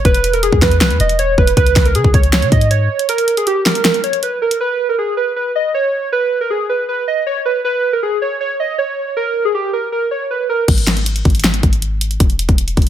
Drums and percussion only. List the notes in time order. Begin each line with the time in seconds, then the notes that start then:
0.05 kick, closed hi-hat
0.14 closed hi-hat
0.24 closed hi-hat
0.33 closed hi-hat
0.43 closed hi-hat
0.52 kick
0.62 finger snap, kick, snare, closed hi-hat
0.71 closed hi-hat
0.81 finger snap, snare, closed hi-hat
0.90 closed hi-hat
1.00 closed hi-hat
1.09 closed hi-hat
1.19 closed hi-hat
1.38 kick
1.47 closed hi-hat
1.57 kick, closed hi-hat
1.66 closed hi-hat
1.76 finger snap, kick, snare, closed hi-hat
1.86 closed hi-hat
1.95 closed hi-hat
2.04 kick
2.14 kick, closed hi-hat
2.23 closed hi-hat
2.33 finger snap, snare, closed hi-hat
2.42 closed hi-hat
2.52 kick, closed hi-hat
2.61 closed hi-hat
2.71 closed hi-hat
2.99 closed hi-hat
3.09 closed hi-hat
3.18 closed hi-hat
3.28 closed hi-hat
3.37 closed hi-hat
3.47 closed hi-hat
3.66 finger snap, snare, closed hi-hat
3.75 closed hi-hat
3.85 finger snap, snare, closed hi-hat
3.94 closed hi-hat
4.04 closed hi-hat
4.13 closed hi-hat
4.23 closed hi-hat
4.51 closed hi-hat
10.68 kick, closed hi-hat, crash
10.78 closed hi-hat
10.87 finger snap, snare, closed hi-hat
10.97 closed hi-hat
11.06 closed hi-hat
11.16 closed hi-hat
11.25 kick, closed hi-hat
11.30 closed hi-hat
11.35 closed hi-hat
11.40 closed hi-hat
11.44 finger snap, snare, closed hi-hat
11.54 closed hi-hat
11.63 kick, closed hi-hat
11.73 closed hi-hat
11.82 closed hi-hat
12.01 closed hi-hat
12.11 closed hi-hat
12.20 kick, closed hi-hat
12.30 closed hi-hat
12.39 closed hi-hat
12.49 kick, closed hi-hat
12.58 closed hi-hat
12.68 closed hi-hat
12.77 kick, closed hi-hat
12.82 closed hi-hat